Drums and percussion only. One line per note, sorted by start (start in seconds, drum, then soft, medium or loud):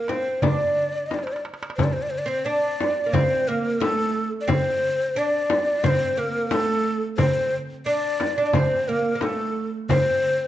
0.08 darbuka tek medium
0.08 frame drum medium
0.25 darbuka ka soft
0.42 darbuka dum medium
0.42 frame drum medium
0.60 darbuka ka soft
1.11 darbuka tek soft
1.11 frame drum medium
1.19 darbuka ka medium
1.27 darbuka tek medium
1.36 darbuka ka medium
1.45 darbuka tek medium
1.54 darbuka ka medium
1.63 darbuka tek medium
1.70 darbuka ka medium
1.78 darbuka dum medium
1.78 frame drum medium
2.80 frame drum medium
3.13 darbuka dum medium
3.13 frame drum medium
3.81 darbuka tek medium
3.81 frame drum medium
3.99 darbuka ka soft
4.15 darbuka ka soft
4.49 frame drum medium
4.49 darbuka dum medium
5.50 darbuka tek medium
5.50 frame drum medium
5.67 darbuka ka soft
5.84 frame drum medium
5.84 darbuka dum medium
6.51 darbuka tek medium
6.51 frame drum medium
6.68 darbuka ka soft
6.85 darbuka ka soft
7.18 frame drum medium
7.18 darbuka dum loud
8.20 darbuka tek medium
8.20 frame drum medium
8.37 darbuka ka soft
8.53 frame drum medium
8.53 darbuka dum medium
9.21 darbuka tek medium
9.21 frame drum medium
9.38 darbuka ka soft
9.56 darbuka ka soft
9.89 darbuka dum medium
9.89 frame drum medium
10.07 darbuka ka soft
10.23 darbuka ka soft